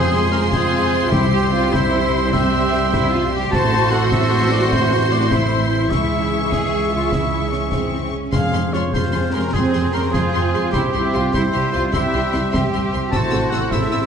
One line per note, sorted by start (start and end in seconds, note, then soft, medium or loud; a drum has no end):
0.00 1.08 F2 medium
0.00 3.48 C3 medium
0.00 1.07 G#3 medium
0.00 1.08 G#3 medium
0.00 0.29 C4 medium
0.00 3.47 C4 medium
0.00 1.07 F4 medium
0.00 0.31 G#4 medium
0.00 0.52 G#4 medium
0.00 3.47 C5 medium
0.00 3.48 C5 medium
0.00 3.48 C6 medium
0.30 0.36 C#4 medium
0.30 0.51 A#4 medium
0.30 0.41 A#4 medium
0.51 1.10 C4 medium
0.51 1.11 F4 medium
0.51 1.11 G#4 loud
0.51 1.11 G#4 medium
0.51 concert bass drum medium
0.51 snare medium
1.11 3.48 C2 medium
1.11 1.69 C3 medium
1.11 3.48 G3 medium
1.11 3.52 G3 medium
1.11 1.75 C4 medium
1.11 1.32 E4 medium
1.11 1.75 G4 medium
1.11 3.48 G4 medium
1.11 1.72 G4 medium
1.11 concert bass drum medium
1.11 snare medium
1.32 1.52 G4 medium
1.53 1.73 F4 medium
1.73 2.35 E4 medium
1.73 2.33 E4 medium
1.73 2.33 C5 medium
1.73 concert bass drum medium
1.73 snare medium
2.33 2.93 C4 medium
2.33 3.32 G4 medium
2.33 3.30 E5 medium
2.33 3.30 E5 loud
2.33 concert bass drum medium
2.33 snare medium
2.73 snare medium
2.93 3.12 E4 medium
2.93 concert bass drum medium
2.93 snare medium
3.13 3.33 F4 medium
3.33 3.52 G4 medium
3.52 5.88 A1 medium
3.52 8.09 E3 medium
3.52 5.87 A3 medium
3.52 5.75 A3 medium
3.52 5.88 C4 medium
3.52 8.09 E4 medium
3.52 5.31 F#4 loud
3.52 5.87 C5 medium
3.52 3.94 C5 medium
3.52 5.60 C5 medium
3.52 3.89 A5 loud
3.52 3.89 A5 medium
3.52 5.87 C6 medium
3.52 concert bass drum medium
3.52 snare medium
3.73 snare soft
3.91 4.11 A4 medium
3.91 4.11 F#5 medium
3.91 4.01 F#5 medium
3.91 snare soft
4.12 4.54 A4 medium
4.12 4.51 E5 medium
4.12 concert bass drum medium
4.12 snare medium
4.51 4.73 F#4 medium
4.51 4.71 D5 medium
4.51 4.60 D5 medium
4.70 5.10 E4 medium
4.70 5.11 C5 medium
4.70 5.13 C5 medium
4.70 concert bass drum medium
4.70 snare medium
5.11 5.32 F#4 medium
5.11 5.31 D5 medium
5.11 5.29 D5 medium
5.29 5.70 E4 medium
5.29 5.91 E4 medium
5.29 5.69 C5 medium
5.29 concert bass drum medium
5.29 snare medium
5.70 5.93 E4 medium
5.70 5.90 C5 medium
5.70 5.92 C5 medium
5.90 8.13 C#2 medium
5.90 8.93 C#3 soft
5.90 8.09 G#3 soft
5.90 6.47 E4 medium
5.90 8.09 G#4 soft
5.90 8.13 G#4 medium
5.90 8.09 G#4 medium
5.90 8.08 E5 medium
5.90 8.12 E5 medium
5.90 8.09 C#6 medium
5.90 concert bass drum medium
5.90 snare medium
6.52 6.90 G#4 medium
6.52 concert bass drum medium
6.52 snare medium
6.94 7.13 F4 medium
7.12 7.53 E4 soft
7.12 concert bass drum medium
7.12 snare medium
7.52 7.73 C#4 soft
7.52 snare soft
7.72 8.12 C4 soft
7.72 concert bass drum medium
7.72 snare medium
8.13 8.33 C#4 soft
8.32 8.41 F2 medium
8.32 8.89 F2 medium
8.32 10.69 F3 medium
8.32 8.42 G#3 medium
8.32 13.09 C4 medium
8.32 10.69 G#4 medium
8.32 8.42 G#4 medium
8.32 8.75 G#4 medium
8.32 13.09 C5 medium
8.32 8.75 F5 medium
8.32 8.70 F5 medium
8.32 8.40 C6 soft
8.32 concert bass drum medium
8.32 snare medium
8.32 crash soft
8.53 8.61 F2 medium
8.53 8.61 G#3 medium
8.53 8.62 G#4 soft
8.53 8.61 C6 soft
8.53 snare soft
8.73 8.82 F2 medium
8.73 8.81 G#3 soft
8.73 8.93 F4 medium
8.73 8.82 G#4 soft
8.73 8.81 C#5 medium
8.73 8.95 C#5 medium
8.73 8.83 C6 soft
8.73 snare soft
8.93 9.01 F2 medium
8.93 9.01 G#3 soft
8.93 13.12 C4 medium
8.93 9.36 F4 medium
8.93 9.02 G#4 soft
8.93 9.32 C5 medium
8.93 9.36 C5 medium
8.93 9.02 C6 medium
8.93 concert bass drum medium
8.93 snare medium
9.13 9.21 F2 soft
9.13 9.22 G#3 medium
9.13 9.23 G#4 medium
9.13 9.21 C6 soft
9.32 9.41 F2 medium
9.32 9.43 G#3 soft
9.32 9.54 C#4 medium
9.32 9.42 G#4 soft
9.32 9.52 A#4 medium
9.32 9.55 A#4 medium
9.32 9.42 C6 soft
9.51 9.61 F2 medium
9.51 9.93 C4 medium
9.51 10.09 C4 medium
9.51 9.92 G#4 medium
9.51 9.93 G#4 medium
9.51 9.62 C6 soft
9.51 concert bass drum medium
9.51 snare soft
9.56 9.63 G#3 medium
9.56 9.63 G#4 soft
9.73 9.81 F2 medium
9.73 9.82 G#3 soft
9.73 9.83 G#4 medium
9.73 9.82 C6 soft
9.93 10.01 F2 medium
9.93 10.02 G#3 soft
9.93 10.14 C#4 medium
9.93 10.02 G#4 soft
9.93 10.12 A#4 medium
9.93 10.03 A#4 medium
9.93 10.02 C6 medium
10.12 10.21 F2 medium
10.12 10.23 G#3 soft
10.12 10.73 C4 medium
10.12 10.73 F4 medium
10.12 10.72 G#4 medium
10.12 10.71 G#4 medium
10.12 10.22 C6 soft
10.12 concert bass drum medium
10.12 snare medium
10.16 10.23 G#4 soft
10.33 10.42 F2 medium
10.33 10.41 G#3 soft
10.33 10.41 G#4 soft
10.33 10.42 C6 medium
10.53 10.61 F2 medium
10.53 10.61 G#3 soft
10.53 10.61 G#4 soft
10.53 10.62 C6 soft
10.72 10.81 C2 medium
10.72 13.09 G3 medium
10.72 11.32 C4 medium
10.72 10.82 C4 medium
10.72 10.82 E4 medium
10.72 11.32 G4 medium
10.72 11.33 G4 medium
10.72 10.82 G4 medium
10.72 13.09 G4 medium
10.72 10.81 C6 medium
10.72 concert bass drum medium
10.72 snare medium
10.93 11.02 C2 medium
10.93 11.03 C4 medium
10.93 11.14 E4 medium
10.93 11.03 G4 medium
10.93 11.01 C6 soft
11.13 11.22 C2 medium
11.13 11.21 C4 medium
11.13 11.35 F4 medium
11.13 11.21 G4 medium
11.13 11.22 C6 soft
11.33 11.43 C2 medium
11.33 11.42 C4 medium
11.33 11.92 E4 medium
11.33 11.43 E4 medium
11.33 11.42 G4 medium
11.33 11.92 C5 medium
11.33 11.93 C5 medium
11.33 11.42 C6 medium
11.33 concert bass drum medium
11.33 snare medium
11.53 11.62 C2 medium
11.53 11.61 C4 medium
11.53 11.61 G4 medium
11.53 11.74 G4 medium
11.53 11.61 C6 soft
11.73 11.82 C2 medium
11.73 11.81 C4 soft
11.73 11.94 F4 medium
11.73 11.81 G4 soft
11.73 11.81 C6 medium
11.93 12.02 C2 medium
11.93 12.02 C4 medium
11.93 12.52 E4 medium
11.93 12.90 G4 medium
11.93 12.02 G4 medium
11.93 12.90 E5 medium
11.93 12.01 C6 medium
11.93 concert bass drum medium
11.93 snare medium
12.13 12.21 C2 medium
12.13 12.23 C4 medium
12.13 12.22 G4 soft
12.13 12.21 C6 soft
12.32 12.42 C2 medium
12.32 12.41 C4 medium
12.32 12.41 G4 soft
12.32 12.40 C6 medium
12.32 snare soft
12.53 12.62 C2 medium
12.53 12.61 C4 medium
12.53 13.11 G4 medium
12.53 12.62 G4 medium
12.53 12.61 C6 soft
12.53 concert bass drum medium
12.53 snare medium
12.73 12.82 C2 medium
12.73 12.81 C4 soft
12.73 12.81 G4 soft
12.73 12.81 C6 soft
12.93 13.01 C2 medium
12.93 13.01 C4 medium
12.93 13.01 G4 medium
12.93 13.01 C6 soft
13.11 13.21 A1 medium
13.11 14.06 C3 medium
13.11 14.06 A3 medium
13.11 13.20 C4 medium
13.11 14.06 C4 medium
13.11 14.06 E4 medium
13.11 13.72 F#4 medium
13.11 13.20 A4 medium
13.11 13.49 C5 medium
13.11 14.06 C5 medium
13.11 13.52 A5 medium
13.11 13.49 A5 medium
13.11 13.21 E6 medium
13.11 concert bass drum medium
13.11 snare medium
13.31 13.42 A1 medium
13.31 13.40 C4 soft
13.31 13.40 A4 soft
13.31 13.39 E6 soft
13.31 snare soft
13.50 13.61 A1 medium
13.50 13.61 C4 soft
13.50 13.59 A4 medium
13.50 13.61 A4 soft
13.50 13.73 F#5 medium
13.50 13.71 F#5 medium
13.50 13.60 E6 soft
13.50 snare soft
13.71 13.81 A1 medium
13.71 13.80 C4 medium
13.71 14.06 E4 medium
13.71 13.80 A4 soft
13.71 14.06 A4 medium
13.71 14.06 E5 medium
13.71 13.80 E6 medium
13.71 concert bass drum medium
13.71 snare medium
13.92 14.01 A1 soft
13.92 14.01 C4 medium
13.92 14.00 A4 medium
13.92 14.00 E6 soft